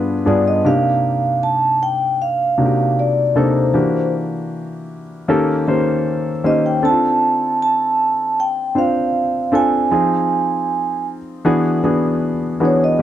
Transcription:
Already playing: grand piano G2 B3 D4 F4 G#4 B4
0.26 grand piano G2 B3 D4 F4 G#4, vibraphone D5
0.48 vibraphone D#5
0.65 grand piano C3 A#3 D4 D#4 G4, vibraphone F5
1.43 vibraphone A5
1.83 vibraphone G5
2.22 vibraphone F5
2.58 grand piano C3 A#3 D4 D#4 F#4
2.65 grand piano G4
2.99 vibraphone D5
3.35 grand piano C3 A#3 D4 D#4 A4, vibraphone C5
3.74 grand piano E3 A#3 D4 F#4 G4
5.28 grand piano D#3 A#3 C#4 G4 A4
5.67 grand piano D#3 A#3 C#4 G4 C5
6.44 grand piano D#3 A#3 C#4 G4 C5, vibraphone D#5
6.66 vibraphone G5
6.82 grand piano C4 D4 D#4 A4, vibraphone A5
6.90 grand piano F4
7.62 vibraphone A5
8.40 vibraphone G5
8.75 grand piano C4 D4 F4 C5, vibraphone F5
9.52 grand piano C4 D4 F4 A4, vibraphone G#5
9.91 grand piano F3 C4 D#4 F4 G#4
11.45 grand piano E3 B3 D4 F#4 G#4
11.84 grand piano E3 B3 D4 F#4 G#4
12.60 grand piano E3 B3 D4 F#4 G#4
12.65 vibraphone C#5
12.84 vibraphone D#5
12.99 grand piano D3 D#3 A#3

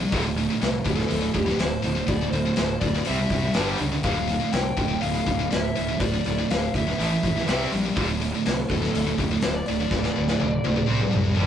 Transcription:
0.00 distorted electric guitar C3 G3
0.12 fingered electric bass D1, distorted electric guitar D2 A2 D3, kick, open hi-hat
0.25 distorted electric guitar D2 A2
0.37 distorted electric guitar D2 A2, open hi-hat
0.50 distorted electric guitar D2 A2
0.61 fingered electric bass C2, distorted electric guitar D2 A2, snare, open hi-hat
0.85 fingered electric bass D1, distorted electric guitar D2 A2, lead electric guitar A4, kick, open hi-hat
0.96 distorted electric guitar D2 A2, snare
1.08 fingered electric bass D1, distorted electric guitar D2 A2, open hi-hat
1.21 distorted electric guitar D2 A2
1.34 fingered electric bass D1, distorted electric guitar D2 A2, kick, open hi-hat
1.39 lead electric guitar G4
1.46 distorted electric guitar D2 A2, snare
1.59 fingered electric bass D1, distorted electric guitar D2 A2, lead electric guitar C5, snare, open hi-hat
1.82 fingered electric bass D1, distorted electric guitar D2 A2, open hi-hat
1.95 distorted electric guitar D2 A2
2.07 fingered electric bass D1, distorted electric guitar D2 A2, lead electric guitar D5, kick, open hi-hat
2.21 distorted electric guitar D2 A2
2.30 fingered electric bass D1, distorted electric guitar D2 A2, lead electric guitar C5, open hi-hat
2.45 distorted electric guitar D2 A2
2.56 fingered electric bass D1, distorted electric guitar D2 A2, snare, open hi-hat
2.80 fingered electric bass D1, distorted electric guitar D2 A2, lead electric guitar D5, kick, open hi-hat
2.94 distorted electric guitar D2 A2, snare
3.05 distorted electric guitar C3 G3 C4, lead electric guitar E5, open hi-hat
3.09 fingered electric bass C2
3.17 distorted electric guitar C3 G3
3.30 fingered electric bass C2, distorted electric guitar C3 G3, kick, open hi-hat
3.42 distorted electric guitar C3 G3
3.54 fingered electric bass G1, distorted electric guitar G2 D3 G3, snare, open hi-hat
3.78 fingered electric bass C#2, distorted electric guitar G2 D3, open hi-hat
3.92 distorted electric guitar G2 D3
4.03 fingered electric bass D1, distorted electric guitar D2 A2 D3, lead electric guitar F5, kick, open hi-hat
4.17 distorted electric guitar D2 A2
4.28 distorted electric guitar D2 A2, open hi-hat
4.40 distorted electric guitar D2 A2
4.52 fingered electric bass C2, distorted electric guitar D2 A2, lead electric guitar G5, snare, open hi-hat
4.77 fingered electric bass D1, distorted electric guitar D2 A2, kick, open hi-hat
4.88 distorted electric guitar D2 A2
5.01 fingered electric bass D1, distorted electric guitar D2 A2, lead electric guitar F5, open hi-hat
5.14 distorted electric guitar D2 A2
5.26 fingered electric bass D1, distorted electric guitar D2 A2, kick, open hi-hat
5.39 distorted electric guitar D2 A2
5.51 fingered electric bass D1, distorted electric guitar D2 A2, lead electric guitar E5, snare, open hi-hat
5.76 fingered electric bass D1, distorted electric guitar D2 A2, open hi-hat
5.88 distorted electric guitar D2 A2
5.99 fingered electric bass D1, distorted electric guitar D2 A2, lead electric guitar D5, kick, open hi-hat
6.14 distorted electric guitar D2 A2
6.25 fingered electric bass D1, distorted electric guitar D2 A2, open hi-hat
6.39 distorted electric guitar D2 A2
6.50 fingered electric bass D1, distorted electric guitar D2 A2, lead electric guitar F5, snare, open hi-hat
6.74 fingered electric bass D1, distorted electric guitar D2 A2, lead electric guitar E5, kick, open hi-hat
6.87 distorted electric guitar D2 A2, snare
6.98 fingered electric bass A1, distorted electric guitar A2 E3 A3, open hi-hat
7.12 distorted electric guitar A2 E3
7.23 fingered electric bass A#1, distorted electric guitar A2 E3, kick, open hi-hat
7.37 distorted electric guitar A2 E3, snare
7.48 fingered electric bass C2, distorted electric guitar C3 G3 C4, snare, open hi-hat
7.72 fingered electric bass A#1, distorted electric guitar C3 G3, open hi-hat
7.85 distorted electric guitar C3 G3
7.96 fingered electric bass D1, distorted electric guitar D2 A2 D3, kick, open hi-hat
8.08 distorted electric guitar D2 A2
8.21 distorted electric guitar D2 A2, open hi-hat
8.35 distorted electric guitar D2 A2
8.46 fingered electric bass C2, distorted electric guitar D2 A2, snare, open hi-hat
8.69 fingered electric bass D1, distorted electric guitar D2 A2, lead electric guitar A4, kick, open hi-hat
8.82 distorted electric guitar D2 A2, snare
8.95 fingered electric bass D1, distorted electric guitar D2 A2, open hi-hat
9.07 distorted electric guitar D2 A2
9.18 fingered electric bass D1, distorted electric guitar D2 A2, kick, open hi-hat
9.31 distorted electric guitar D2 A2
9.42 fingered electric bass D1, distorted electric guitar D2 A2, lead electric guitar C5, snare, open hi-hat
9.54 lead electric guitar D5
9.66 fingered electric bass D1, distorted electric guitar D2 A2, lead electric guitar D5, open hi-hat
9.80 distorted electric guitar D2 A2
9.91 fingered electric bass D1, distorted electric guitar D2 A2, kick, snare
10.03 distorted electric guitar D2 A2, snare
10.16 fingered electric bass D1, distorted electric guitar D2 A2
10.28 distorted electric guitar D2 A2, snare
10.40 fingered electric bass D1, distorted electric guitar D2 A2, high tom
10.64 fingered electric bass D1, distorted electric guitar D2 A2, high tom
10.76 distorted electric guitar D2 A2, mid tom
10.87 fingered electric bass C2, distorted electric guitar C3 G3 C4
11.00 distorted electric guitar C3 G3, mid tom
11.11 distorted electric guitar C3 G3, mid tom
11.15 fingered electric bass C2
11.24 distorted electric guitar C3 G3
11.34 distorted electric guitar G2 D3 G3, mid tom
11.38 fingered electric bass G1, distorted electric guitar G2 G3

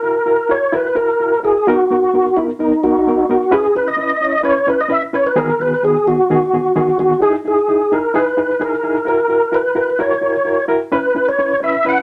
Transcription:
Already playing: tonewheel organ A#4
0.03 reed electric piano E4 F#4 A#4
0.26 reed electric piano E4 F#4 A#4
0.49 reed electric piano E4 F#4 A#4, tonewheel organ C#5
0.72 reed electric piano E4 F#4 A#4, tonewheel organ B4
0.95 reed electric piano E4 F#4 A#4, tonewheel organ A#4
1.20 reed electric piano E4 F#4 A#4
1.43 reed electric piano E4 F#4 A#4, tonewheel organ G#4
1.67 reed electric piano B3 D#4 A#4, tonewheel organ F#4
1.90 reed electric piano B3 D#4 A#4
2.14 reed electric piano B3 D#4 A#4
2.37 reed electric piano B3 D#4 A#4, tonewheel organ E4
2.59 reed electric piano B3 D#4 A#4, tonewheel organ D#4
2.84 reed electric piano B3 D#4 A#4, tonewheel organ F#4
3.07 reed electric piano B3 D#4 A#4
3.29 reed electric piano B3 D#4 A#4
3.51 reed electric piano C#4 E4 B4, tonewheel organ G#4
3.75 reed electric piano C#4 E4 B4, tonewheel organ B4
3.88 tonewheel organ D#5
3.97 reed electric piano C#4 E4 B4
4.21 reed electric piano C#4 E4 C#5
4.43 reed electric piano C#4 E4 B4, tonewheel organ C#5
4.67 reed electric piano C#4 E4 B4, tonewheel organ B4
4.81 tonewheel organ D#5
4.88 reed electric piano C#4 E4 B4, tonewheel organ E5
5.13 reed electric piano C#4 E4 B4, tonewheel organ C#5
5.27 tonewheel organ B4
5.36 reed electric piano D#3 B3 F#4 G#4, tonewheel organ A#4
5.59 reed electric piano D#3 B3 F#4 G#4, tonewheel organ B4
5.82 reed electric piano D#3 B3 F#4 G#4, tonewheel organ G#4
6.06 reed electric piano D#3 B3 F#4 G#4, tonewheel organ F#4
6.30 reed electric piano D#3 B3 F#4 G#4
6.53 reed electric piano D#3 B3 F#4 G#4
6.76 reed electric piano D#3 B3 F#4 G#4
6.99 reed electric piano D#3 B3 F#4 G#4, tonewheel organ F#4
7.22 reed electric piano D#4 E4 G#4, tonewheel organ G#4
7.45 reed electric piano D#4 E4 G#4, tonewheel organ G#4
7.68 reed electric piano D#4 E4 G#4
7.92 reed electric piano D#4 E4 G#4, tonewheel organ A#4
8.14 reed electric piano D#4 E4 G#4, tonewheel organ B4
8.37 reed electric piano D#4 E4 G#4
8.60 reed electric piano D#4 E4 G#4, tonewheel organ A#4
8.83 reed electric piano D#4 E4 G#4
9.05 reed electric piano E4 F#4 A#4, tonewheel organ A#4
9.28 reed electric piano E4 F#4 A#4
9.51 reed electric piano E4 F#4 A#4, tonewheel organ B4
9.75 reed electric piano E4 F#4 A#4
9.99 reed electric piano E4 F#4 A#4, tonewheel organ C#5
10.21 reed electric piano E4 F#4 A#4
10.45 reed electric piano E4 F#4 A#4
10.68 reed electric piano E4 F#4 A#4
10.92 reed electric piano C#4 E4 B4, tonewheel organ B4
11.15 reed electric piano C#4 E4 B4
11.29 tonewheel organ C#5
11.38 reed electric piano C#4 E4 B4
11.61 reed electric piano C#4 E4 B4, tonewheel organ E5
11.85 reed electric piano C#4 E4 B4
11.89 tonewheel organ F#5

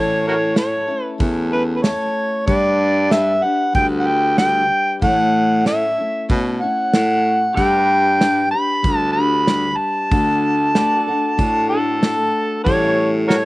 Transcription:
Already playing: steel-string acoustic guitar A2 E3 A3 C#4 E4 A4, baritone saxophone A2, harmonica C#5
0.28 harmonica F#4 A#4 C#5
0.54 steel-string acoustic guitar A3 C#4 E4 A4, harmonica C#5, snare, open hi-hat
0.87 steel-string acoustic guitar A3 C#4 E4 A4
1.03 harmonica B4
1.19 baritone saxophone E2, steel-string acoustic guitar A3 C#4 E4 A4, kick, open hi-hat
1.50 steel-string acoustic guitar A3 C#4 E4 A4, harmonica B4
1.76 harmonica B4
1.83 steel-string acoustic guitar A3 C#4 E4 A4, harmonica C#5, snare, open hi-hat
2.47 baritone saxophone G2, steel-string acoustic guitar G3 D4 G4 B4, harmonica D5, kick, open hi-hat
3.10 steel-string acoustic guitar G3 D4 G4 B4, harmonica E5, snare, open hi-hat
3.42 steel-string acoustic guitar D4 G4 B4, harmonica F#5
3.73 baritone saxophone D2, steel-string acoustic guitar G3 D4 G4 B4, harmonica G5, kick, open hi-hat
3.99 harmonica F#5
4.05 steel-string acoustic guitar D4 G4 B4, harmonica G5
4.37 steel-string acoustic guitar G3 D4 G4 B4, harmonica G5, snare, open hi-hat
5.01 steel-string acoustic guitar A2 E3 A3 C#4 E4 C#5, baritone saxophone A2, harmonica F#5, kick, open hi-hat
5.65 steel-string acoustic guitar A3 C#4 E4 C#5, harmonica E5, snare, open hi-hat
5.97 steel-string acoustic guitar A3 C#4 E4 C#5
6.29 baritone saxophone B2, steel-string acoustic guitar A3 C#4 E4 C#5, kick, open hi-hat
6.61 steel-string acoustic guitar A3 C#4 E4 C#5, harmonica F#5
6.93 baritone saxophone A2, steel-string acoustic guitar A3 C#4 E4 C#5, snare, open hi-hat
7.54 baritone saxophone G2, steel-string acoustic guitar G3 D4 G4, pedal steel guitar G4 A4 D5, harmonica G5, kick, open hi-hat
7.59 steel-string acoustic guitar B4
7.80 pedal steel guitar B4
8.19 steel-string acoustic guitar G3 D4 G4 B4, snare, open hi-hat
8.51 steel-string acoustic guitar D4 G4 B4, harmonica B5
8.83 baritone saxophone D2, steel-string acoustic guitar G3 D4 G4 B4, kick, open hi-hat
8.97 harmonica A5
9.13 steel-string acoustic guitar G4 B4, harmonica B5
9.18 steel-string acoustic guitar D4
9.46 steel-string acoustic guitar G3 D4 G4 B4, snare, open hi-hat
9.76 harmonica A5
10.11 baritone saxophone D2, steel-string acoustic guitar D3 A3 D4 F#4 A4, kick, open hi-hat
10.75 steel-string acoustic guitar A3 D4 F#4 A4, pedal steel guitar G4 B4 D5, snare, open hi-hat
10.96 pedal steel guitar F#4
11.02 pedal steel guitar A4
11.07 steel-string acoustic guitar D4 F#4 A4
11.37 baritone saxophone A2, steel-string acoustic guitar A3 D4 F#4 A4, kick, open hi-hat
11.69 steel-string acoustic guitar F#4 A4, harmonica A4
11.73 steel-string acoustic guitar D4
12.01 steel-string acoustic guitar A3 D4 F#4 A4, snare, open hi-hat
12.64 steel-string acoustic guitar A2 E3 G3 C#4 G4 A4, baritone saxophone A2, pedal steel guitar F#4 A4 D5, harmonica C#5, kick, open hi-hat
12.87 pedal steel guitar E4 C#5
13.28 steel-string acoustic guitar G3 C#4 G4, harmonica F#4 A#4 C#5, snare, open hi-hat
13.33 steel-string acoustic guitar A4

